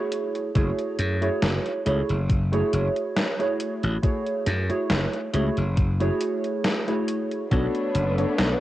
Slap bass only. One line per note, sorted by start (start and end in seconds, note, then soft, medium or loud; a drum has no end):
0.55 0.70 F#1 medium
0.99 1.28 F#2 loud
1.42 1.57 F#1 medium
1.86 2.01 C#2 medium
2.09 2.61 F#1 medium
2.73 2.88 F#1 medium
3.83 3.96 A1 medium
4.47 4.70 F#2 loud
4.70 muted slap bass stroke soft
4.91 5.05 F#1 medium
5.34 5.49 C#2 medium
5.57 6.09 F#1 medium
7.51 7.66 B1 medium
7.95 8.24 F#1 loud
8.38 8.53 B1 loud